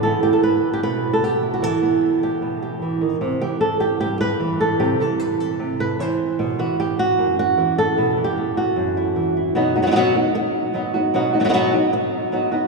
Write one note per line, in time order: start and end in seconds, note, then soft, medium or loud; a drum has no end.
0.03 1.62 E3 medium
0.03 0.23 B3 medium
0.03 1.43 E4 medium
0.03 0.23 A4 medium
0.23 1.22 B3 medium
0.23 0.33 G4 medium
0.33 0.43 A4 medium
0.43 0.73 B4 medium
0.73 0.83 G4 medium
0.83 1.62 B2 medium
0.83 1.13 B4 loud
1.13 1.24 A4 medium
1.23 1.60 B3 medium
1.23 1.53 G4 medium
1.43 3.04 E4 soft
1.54 1.64 F#4 medium
1.62 2.82 E3 medium
1.62 2.23 A4 medium
1.82 3.19 B3 medium
2.23 2.61 G4 medium
2.42 3.01 B2 medium
2.62 3.41 G4 soft
2.82 3.02 E3 medium
3.01 3.21 D#3 medium
3.21 3.41 C3 medium
3.41 4.40 E3 medium
3.41 3.60 G4 medium
3.61 3.80 A4 medium
3.80 3.99 G4 medium
4.00 4.78 G2 medium
4.00 4.20 G4 loud
4.21 4.60 B4 loud
4.40 4.99 E3 medium
4.61 4.99 A4 medium
4.80 5.00 C3 medium
4.80 5.40 G4 medium
5.00 5.99 E3 medium
5.00 5.19 A4 medium
5.19 5.40 B4 medium
5.40 5.80 A4 medium
5.59 5.99 C3 medium
5.80 6.00 B4 loud
5.99 6.58 E3 medium
5.99 6.40 C5 loud
6.39 6.59 B2 medium
6.59 7.56 E3 medium
6.59 6.79 F#4 medium
6.80 6.99 G4 medium
6.99 7.38 F#4 loud
7.18 7.98 F#2 medium
7.39 7.78 F#4 loud
7.58 8.16 E3 medium
7.78 8.24 A4 medium
7.98 8.18 B2 medium
8.17 9.15 E3 medium
8.24 8.57 G4 medium
8.37 9.54 B3 soft
8.57 9.56 F#4 medium
8.76 9.56 F#2 medium
8.97 9.36 E4 soft
9.16 9.55 E3 medium
9.37 9.54 E4 soft
9.55 9.75 B2 medium
9.55 9.75 F#3 medium
9.55 9.75 B3 medium
9.55 9.75 D#4 medium
9.55 9.74 F#4 medium
9.76 9.81 B3 medium
9.76 9.82 D#4 medium
9.76 9.82 F#4 medium
9.82 9.85 F#3 medium
9.82 9.86 B3 medium
9.82 9.86 D#4 medium
9.82 9.87 F#4 medium
9.87 9.90 F#3 medium
9.87 9.90 B3 medium
9.87 9.91 D#4 medium
9.87 9.91 F#4 medium
9.91 9.95 F#3 medium
9.91 9.95 B3 medium
9.91 9.95 D#4 medium
9.91 9.96 F#4 medium
9.96 10.15 B2 medium
9.96 10.15 F#3 medium
9.96 10.15 B3 medium
9.96 10.15 D#4 medium
9.96 10.14 F#4 loud
10.15 10.34 B3 soft
10.15 10.34 D#4 soft
10.15 10.34 F#4 medium
10.35 muted nylon-string guitar stroke medium
10.74 10.93 F#3 medium
10.74 10.93 B3 medium
10.74 10.94 D#4 medium
10.74 10.93 F#4 medium
10.94 11.14 B3 soft
10.94 11.13 D#4 soft
10.94 11.13 F#4 medium
11.14 11.33 B2 medium
11.14 11.33 F#3 medium
11.14 11.33 B3 medium
11.14 11.33 D#4 medium
11.14 11.32 F#4 medium
11.33 11.39 B3 soft
11.33 11.40 D#4 medium
11.33 11.40 F#4 medium
11.40 11.43 F#3 medium
11.40 11.43 B3 medium
11.40 11.44 D#4 medium
11.40 11.44 F#4 medium
11.44 11.48 F#3 medium
11.44 11.48 B3 medium
11.44 11.49 D#4 medium
11.44 11.49 F#4 medium
11.49 11.53 F#3 medium
11.49 11.53 B3 medium
11.49 11.53 D#4 medium
11.49 11.53 F#4 medium
11.54 11.73 B2 medium
11.54 11.73 F#3 medium
11.54 11.73 B3 loud
11.54 11.73 D#4 loud
11.54 11.71 F#4 medium
11.73 11.92 B3 soft
11.73 11.92 D#4 medium
11.73 11.92 F#4 medium
11.93 muted nylon-string guitar stroke medium
12.32 12.51 F#3 medium
12.32 12.52 B3 medium
12.32 12.52 D#4 medium
12.32 12.50 F#4 medium
12.52 12.67 B3 soft
12.52 12.67 D#4 soft
12.52 12.67 F#4 medium